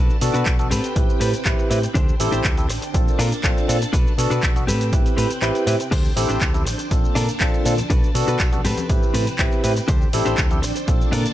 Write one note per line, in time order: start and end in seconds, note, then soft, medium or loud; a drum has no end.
0.00 0.15 D4 loud
0.00 0.68 D4 medium
0.00 0.16 F#4 loud
0.00 0.16 A4 loud
0.00 0.16 B4 loud
0.00 1.93 B4 medium
0.00 0.70 A5 medium
0.10 muted fingered electric bass stroke soft
0.10 shaker soft
0.21 0.29 B2 loud
0.21 0.56 B3 medium
0.21 0.56 D4 medium
0.21 0.56 F#4 medium
0.21 0.56 A4 loud
0.21 open hi-hat loud
0.21 shaker medium
0.34 0.42 B2 medium
0.34 0.53 D4 medium
0.34 0.53 F#4 medium
0.34 0.53 A4 medium
0.34 0.53 B4 loud
0.34 closed hi-hat medium
0.34 shaker soft
0.46 0.73 B1 medium
0.46 kick loud
0.46 clap loud
0.46 closed hi-hat medium
0.46 shaker soft
0.59 0.67 B3 medium
0.59 0.67 D4 medium
0.59 0.67 F#4 medium
0.59 0.67 A4 medium
0.59 closed hi-hat soft
0.59 shaker soft
0.71 0.79 A2 loud
0.71 1.11 C4 medium
0.71 1.94 C4 medium
0.71 1.11 G4 medium
0.71 1.11 A4 medium
0.71 1.12 B4 loud
0.71 1.94 G5 medium
0.71 open hi-hat medium
0.71 shaker medium
0.84 closed hi-hat soft
0.84 shaker soft
0.96 1.08 A1 medium
0.96 1.30 C4 medium
0.96 1.30 E4 medium
0.96 1.31 G4 medium
0.96 1.31 B4 medium
0.96 kick loud
0.96 closed hi-hat medium
0.96 shaker soft
1.09 muted fingered electric bass stroke soft
1.09 shaker soft
1.20 1.33 A2 medium
1.20 1.33 C4 loud
1.20 1.33 G4 loud
1.20 1.34 A4 loud
1.20 1.34 B4 loud
1.20 open hi-hat loud
1.20 shaker medium
1.33 muted fingered electric bass stroke soft
1.33 closed hi-hat medium
1.33 shaker soft
1.45 1.53 A1 medium
1.45 1.67 C4 loud
1.45 1.68 E4 medium
1.45 1.68 G4 medium
1.45 1.68 B4 loud
1.45 muted clean electric guitar stroke medium
1.45 kick loud
1.45 clap loud
1.45 closed hi-hat medium
1.45 shaker soft
1.58 muted clean electric guitar stroke soft
1.58 shaker soft
1.70 1.86 A2 medium
1.70 1.78 C4 medium
1.70 1.78 E4 medium
1.70 1.78 G4 medium
1.70 1.78 B4 loud
1.70 muted clean electric guitar stroke soft
1.70 open hi-hat medium
1.70 shaker medium
1.82 muted clean electric guitar stroke soft
1.82 closed hi-hat soft
1.82 shaker soft
1.94 2.10 D2 loud
1.94 2.14 D4 loud
1.94 4.65 D4 medium
1.94 2.14 G4 loud
1.94 2.14 A4 loud
1.94 2.94 C5 medium
1.94 2.14 C5 loud
1.94 2.94 G5 medium
1.94 kick loud
1.94 closed hi-hat medium
1.94 shaker soft
2.09 shaker soft
2.20 2.28 A1 loud
2.20 2.54 C4 medium
2.20 2.54 E4 medium
2.20 2.55 G4 medium
2.20 2.55 A4 loud
2.20 open hi-hat loud
2.20 shaker medium
2.32 2.40 A1 medium
2.32 2.51 D4 medium
2.32 2.51 G4 medium
2.32 2.51 A4 medium
2.32 2.52 C5 loud
2.32 closed hi-hat medium
2.32 shaker soft
2.44 2.69 D2 medium
2.44 kick loud
2.44 clap loud
2.44 closed hi-hat medium
2.44 shaker soft
2.57 2.65 C4 medium
2.57 2.65 E4 medium
2.57 2.65 G4 medium
2.57 2.65 A4 medium
2.57 closed hi-hat soft
2.57 shaker soft
2.69 2.77 A1 loud
2.69 muted clean electric guitar stroke medium
2.69 open hi-hat medium
2.69 shaker medium
2.82 muted clean electric guitar stroke soft
2.82 closed hi-hat medium
2.82 shaker soft
2.94 3.10 A#1 medium
2.94 3.93 A#3 medium
2.94 3.29 C4 medium
2.94 3.29 D4 medium
2.94 3.29 F4 medium
2.94 3.29 A4 medium
2.94 4.66 A5 medium
2.94 kick loud
2.94 closed hi-hat medium
2.94 shaker soft
3.08 shaker soft
3.19 3.31 A#2 loud
3.19 3.32 D4 loud
3.19 3.32 F4 loud
3.19 3.32 A4 loud
3.19 3.32 A#4 loud
3.19 open hi-hat loud
3.19 shaker medium
3.32 muted fingered electric bass stroke soft
3.32 closed hi-hat medium
3.32 shaker soft
3.43 3.52 A#1 medium
3.43 3.66 C4 loud
3.43 3.66 D4 medium
3.43 3.66 F4 medium
3.43 3.66 A4 loud
3.43 muted clean electric guitar stroke medium
3.43 kick loud
3.43 clap loud
3.43 closed hi-hat medium
3.43 shaker soft
3.56 muted clean electric guitar stroke soft
3.56 shaker soft
3.68 3.84 A#2 medium
3.68 3.76 C4 medium
3.68 3.76 D4 medium
3.68 3.77 F4 medium
3.68 3.77 A4 loud
3.68 muted clean electric guitar stroke soft
3.68 open hi-hat medium
3.68 shaker medium
3.81 muted clean electric guitar stroke soft
3.81 closed hi-hat medium
3.81 shaker soft
3.93 4.05 B1 loud
3.93 4.12 D4 loud
3.93 4.12 F#4 loud
3.93 4.12 A4 loud
3.93 5.90 B4 medium
3.93 4.13 B4 loud
3.93 kick loud
3.93 closed hi-hat medium
3.93 shaker soft
4.06 muted fingered electric bass stroke soft
4.06 shaker soft
4.18 4.26 B2 loud
4.18 4.53 B3 loud
4.18 4.53 D4 medium
4.18 4.53 F#4 medium
4.18 4.53 A4 loud
4.18 open hi-hat loud
4.18 shaker medium
4.30 4.38 B2 medium
4.30 4.49 D4 medium
4.30 4.50 F#4 medium
4.30 4.50 A4 medium
4.30 4.50 B4 loud
4.30 closed hi-hat medium
4.30 shaker soft
4.43 4.69 B1 medium
4.43 kick loud
4.43 clap loud
4.43 closed hi-hat medium
4.43 shaker soft
4.55 4.63 B3 medium
4.55 4.63 D4 medium
4.55 4.63 F#4 medium
4.55 4.64 A4 medium
4.55 closed hi-hat soft
4.55 shaker soft
4.67 4.94 A2 loud
4.67 5.08 C4 medium
4.67 5.91 C4 medium
4.67 5.08 G4 medium
4.67 5.08 A4 medium
4.67 5.08 B4 loud
4.67 6.89 G5 medium
4.67 open hi-hat medium
4.67 shaker medium
4.81 closed hi-hat medium
4.81 shaker soft
4.92 5.05 A1 medium
4.92 5.27 C4 medium
4.92 5.27 E4 medium
4.92 5.27 G4 medium
4.92 5.27 B4 medium
4.92 kick loud
4.92 closed hi-hat medium
4.92 shaker soft
5.05 muted fingered electric bass stroke soft
5.05 closed hi-hat soft
5.05 shaker soft
5.17 5.25 A2 medium
5.17 5.30 C4 loud
5.17 5.30 G4 loud
5.17 5.30 A4 loud
5.17 5.31 B4 loud
5.17 open hi-hat loud
5.17 shaker medium
5.30 closed hi-hat medium
5.30 shaker soft
5.41 5.50 A1 medium
5.41 5.64 C4 loud
5.41 5.64 E4 medium
5.41 5.64 G4 medium
5.41 5.65 B4 loud
5.41 muted clean electric guitar stroke medium
5.41 clap loud
5.41 closed hi-hat medium
5.41 shaker soft
5.54 muted clean electric guitar stroke soft
5.54 closed hi-hat soft
5.54 shaker soft
5.67 5.75 A2 medium
5.67 5.75 C4 medium
5.67 5.75 E4 medium
5.67 5.75 G4 medium
5.67 5.75 B4 loud
5.67 muted clean electric guitar stroke soft
5.67 open hi-hat medium
5.67 shaker medium
5.79 muted clean electric guitar stroke soft
5.79 closed hi-hat medium
5.79 shaker soft
5.91 6.07 D2 loud
5.91 6.10 D4 loud
5.91 8.62 D4 medium
5.91 6.11 G4 loud
5.91 6.11 A4 loud
5.91 6.90 C5 medium
5.91 6.11 C5 loud
5.91 kick loud
5.91 closed hi-hat medium
5.91 crash medium
5.91 tambourine medium
5.91 shaker soft
6.05 tambourine soft
6.05 shaker soft
6.16 6.24 A1 loud
6.16 6.51 C4 medium
6.16 6.51 E4 medium
6.16 6.51 G4 medium
6.16 6.51 A4 loud
6.16 open hi-hat loud
6.16 tambourine medium
6.16 shaker medium
6.29 6.37 A1 medium
6.29 6.48 D4 medium
6.29 6.48 G4 medium
6.29 6.48 A4 medium
6.29 6.48 C5 loud
6.29 closed hi-hat medium
6.29 tambourine soft
6.29 shaker soft
6.41 6.66 D2 loud
6.41 kick loud
6.41 clap loud
6.41 closed hi-hat medium
6.41 tambourine soft
6.41 shaker soft
6.54 6.61 C4 medium
6.54 6.62 E4 medium
6.54 6.62 G4 medium
6.54 6.62 A4 medium
6.54 closed hi-hat soft
6.54 tambourine soft
6.54 high conga medium
6.54 shaker soft
6.65 6.74 A1 loud
6.65 muted clean electric guitar stroke medium
6.65 open hi-hat medium
6.65 tambourine loud
6.65 shaker medium
6.78 muted clean electric guitar stroke soft
6.78 closed hi-hat medium
6.78 tambourine soft
6.78 shaker soft
6.91 7.06 A#1 medium
6.91 7.89 A#3 medium
6.91 7.25 C4 medium
6.91 7.26 D4 medium
6.91 7.26 F4 medium
6.91 7.26 A4 medium
6.91 8.63 A5 medium
6.91 kick loud
6.91 closed hi-hat medium
6.91 tambourine medium
6.91 shaker soft
7.04 tambourine soft
7.04 shaker soft
7.15 7.28 A#2 medium
7.15 7.28 D4 loud
7.15 7.29 F4 loud
7.15 7.29 A4 loud
7.15 7.29 A#4 loud
7.15 open hi-hat loud
7.15 tambourine loud
7.15 low conga medium
7.15 shaker medium
7.28 muted fingered electric bass stroke soft
7.28 closed hi-hat medium
7.28 tambourine soft
7.28 shaker soft
7.40 7.48 A#1 medium
7.40 7.62 C4 loud
7.40 7.63 D4 medium
7.40 7.63 F4 medium
7.40 7.63 A4 loud
7.40 muted clean electric guitar stroke medium
7.40 kick loud
7.40 clap loud
7.40 closed hi-hat medium
7.40 tambourine medium
7.40 shaker soft
7.53 muted clean electric guitar stroke soft
7.53 tambourine soft
7.53 shaker soft
7.65 7.81 A#2 medium
7.65 7.73 C4 medium
7.65 7.73 D4 medium
7.65 7.73 F4 medium
7.65 7.74 A4 loud
7.65 muted clean electric guitar stroke soft
7.65 open hi-hat medium
7.65 tambourine medium
7.65 shaker medium
7.78 muted clean electric guitar stroke soft
7.78 closed hi-hat medium
7.78 tambourine soft
7.78 high conga medium
7.78 shaker soft
7.90 8.02 B1 loud
7.90 8.09 D4 loud
7.90 8.09 F#4 loud
7.90 8.09 A4 loud
7.90 8.63 B4 medium
7.90 8.10 B4 loud
7.90 kick loud
7.90 closed hi-hat medium
7.90 tambourine medium
7.90 shaker soft
8.03 muted fingered electric bass stroke soft
8.03 tambourine soft
8.03 shaker soft
8.14 8.23 B2 loud
8.14 8.49 B3 medium
8.14 8.49 D4 medium
8.14 8.50 F#4 medium
8.14 8.50 A4 loud
8.14 open hi-hat loud
8.14 tambourine loud
8.14 shaker medium
8.27 8.35 B2 medium
8.27 8.46 D4 medium
8.27 8.46 F#4 medium
8.27 8.47 A4 medium
8.27 8.47 B4 loud
8.27 closed hi-hat medium
8.27 tambourine soft
8.27 shaker soft
8.39 8.66 B1 medium
8.39 kick loud
8.39 clap loud
8.39 closed hi-hat medium
8.39 tambourine soft
8.39 shaker soft
8.52 8.60 B3 medium
8.52 8.60 D4 medium
8.52 8.60 F#4 medium
8.52 8.60 A4 medium
8.52 closed hi-hat soft
8.52 tambourine soft
8.52 high conga medium
8.52 shaker soft
8.64 8.72 A2 loud
8.64 9.04 C4 medium
8.64 9.87 C4 medium
8.64 9.05 G4 medium
8.64 9.05 A4 medium
8.64 9.87 B4 medium
8.64 9.05 B4 loud
8.64 10.86 G5 medium
8.64 open hi-hat loud
8.64 tambourine medium
8.64 shaker medium
8.77 closed hi-hat medium
8.77 tambourine soft
8.77 high conga medium
8.77 shaker soft
8.89 9.02 A1 medium
8.89 9.24 C4 medium
8.89 9.24 E4 medium
8.89 9.24 G4 medium
8.89 9.24 B4 medium
8.89 kick loud
8.89 closed hi-hat medium
8.89 tambourine medium
8.89 shaker soft
9.02 muted fingered electric bass stroke soft
9.02 tambourine soft
9.02 shaker soft
9.14 9.26 A2 medium
9.14 9.27 C4 loud
9.14 9.27 G4 loud
9.14 9.27 A4 loud
9.14 9.27 B4 loud
9.14 open hi-hat loud
9.14 tambourine loud
9.14 high conga medium
9.14 shaker medium
9.27 muted fingered electric bass stroke soft
9.27 closed hi-hat medium
9.27 tambourine soft
9.27 shaker soft
9.38 9.47 A1 medium
9.38 9.61 C4 loud
9.38 9.61 E4 medium
9.38 9.61 G4 medium
9.38 9.61 B4 loud
9.38 muted clean electric guitar stroke medium
9.38 kick loud
9.38 clap loud
9.38 closed hi-hat medium
9.38 tambourine medium
9.38 shaker soft
9.51 muted clean electric guitar stroke soft
9.51 tambourine soft
9.51 shaker soft
9.63 9.79 A2 medium
9.63 9.72 C4 loud
9.63 9.72 E4 medium
9.63 9.72 G4 medium
9.63 9.72 B4 loud
9.63 muted clean electric guitar stroke soft
9.63 open hi-hat loud
9.63 tambourine medium
9.63 shaker medium
9.76 muted clean electric guitar stroke soft
9.76 closed hi-hat medium
9.76 tambourine soft
9.76 shaker soft
9.88 10.04 D2 loud
9.88 10.07 D4 loud
9.88 11.33 D4 medium
9.88 10.07 G4 loud
9.88 10.07 A4 loud
9.88 10.87 C5 medium
9.88 10.08 C5 loud
9.88 kick loud
9.88 closed hi-hat medium
9.88 tambourine medium
9.88 shaker soft
10.01 tambourine soft
10.01 shaker soft
10.13 10.21 A1 loud
10.13 10.48 C4 loud
10.13 10.48 E4 medium
10.13 10.48 G4 medium
10.13 10.48 A4 loud
10.13 open hi-hat loud
10.13 tambourine medium
10.13 shaker medium
10.25 10.33 A1 medium
10.25 10.44 D4 medium
10.25 10.44 G4 medium
10.25 10.45 A4 medium
10.25 10.45 C5 loud
10.25 closed hi-hat medium
10.25 tambourine soft
10.25 shaker soft
10.38 10.63 D2 medium
10.38 kick loud
10.38 clap loud
10.38 closed hi-hat medium
10.38 tambourine medium
10.38 shaker soft
10.51 10.58 C4 medium
10.51 10.58 E4 medium
10.51 10.59 G4 medium
10.51 10.59 A4 medium
10.51 closed hi-hat soft
10.51 tambourine soft
10.51 high conga medium
10.51 shaker soft
10.62 10.71 A1 loud
10.62 muted clean electric guitar stroke medium
10.62 open hi-hat medium
10.62 tambourine medium
10.62 shaker medium
10.75 muted clean electric guitar stroke soft
10.75 closed hi-hat soft
10.75 tambourine soft
10.75 shaker soft
10.87 11.03 A#1 medium
10.87 11.33 A#3 medium
10.87 11.22 C4 medium
10.87 11.22 D4 medium
10.87 11.23 F4 medium
10.87 11.23 A4 medium
10.87 11.33 A5 medium
10.87 kick loud
10.87 closed hi-hat medium
10.87 tambourine soft
10.87 shaker soft
11.00 tambourine soft
11.00 shaker soft
11.12 11.25 A#2 medium
11.12 11.25 D4 loud
11.12 11.25 F4 loud
11.12 11.26 A4 loud
11.12 11.26 A#4 loud
11.12 open hi-hat loud
11.12 tambourine medium
11.12 low conga medium
11.12 shaker medium
11.25 muted fingered electric bass stroke soft
11.25 closed hi-hat soft
11.25 tambourine soft
11.25 shaker soft